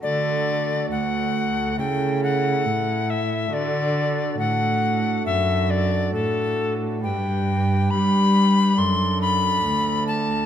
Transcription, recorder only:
X:1
M:4/4
L:1/8
Q:1/4=69
K:D
V:1 name="Recorder"
d2 f2 g f2 e | d2 f2 e d A z | g2 b2 =c' b2 a |]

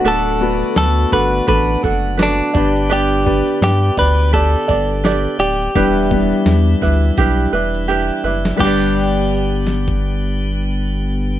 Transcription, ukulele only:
X:1
M:4/4
L:1/8
Q:"Swing 16ths" 1/4=84
K:G
V:1 name="Ukulele"
[DFAB]3 [DFA] [DFAB] [DFA] [DFAB] [DGd] | [DGBd]3 [DGd] [DGBd] [DGd] [DGBd] [DGd] | [DEGB]3 [DEB] [DEGB] [DEB] [DEGB] [DEB] | [DGBd]8 |]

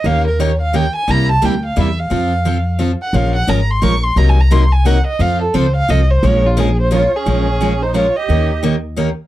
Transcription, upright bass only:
X:1
M:3/4
L:1/8
Q:"Swing" 1/4=175
K:Bbm
V:1 name="Upright bass" clef=bass
E,,6 | C,,2 =D,,2 =E,,2 | F,,6 | B,,,2 A,,,2 B,,,2 |
C,,6 | F,,2 D,,2 C,,2 | B,,,6 | B,,,6 |
E,,6 |]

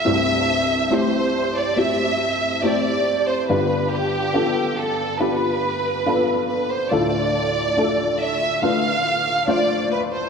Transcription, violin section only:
X:1
M:4/4
L:1/16
Q:1/4=70
K:Ddor
V:1 name="Violin section"
e4 c3 d e4 d3 c | B2 G4 A2 B6 B c | d6 e2 f4 d2 B c |]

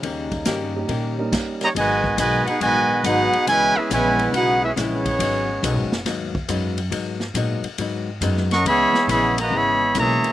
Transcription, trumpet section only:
X:1
M:4/4
L:1/8
Q:"Swing" 1/4=139
K:G#m
V:1 name="Trumpet section"
z6 z [=Gcda] | [FBdg]2 [FBdg] [DGBf] [FBdg]2 [DGBf]2 | [EBcg] [CGBe] [EBcg]2 [DGBf] [CGBe] [B,EGc]2- | [B,EGc]4 z4 |
z6 z [Adfc'] | [Gceb]2 [Gceb] [FBda] [Gceb]2 [Gcea]2 |]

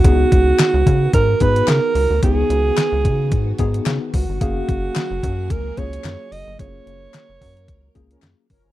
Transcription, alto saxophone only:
X:1
M:4/4
L:1/8
Q:"Swing 16ths" 1/4=110
K:C#mix
V:1 name="Alto saxophone"
F4 A B A2 | G6 z F- | F4 A c2 d | c6 z2 |]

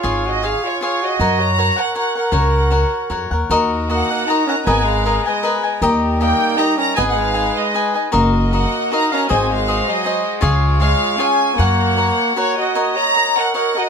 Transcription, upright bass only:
X:1
M:3/4
L:1/8
Q:1/4=156
K:F#
V:1 name="Upright bass" clef=bass
G,,,4 z2 | F,,4 z2 | C,,4 E,, D,, | D,,4 z2 |
G,,,4 z2 | D,,4 z2 | G,,,4 z2 | F,,,4 z2 |
G,,,4 z2 | C,,4 z2 | F,,4 z2 | z6 |]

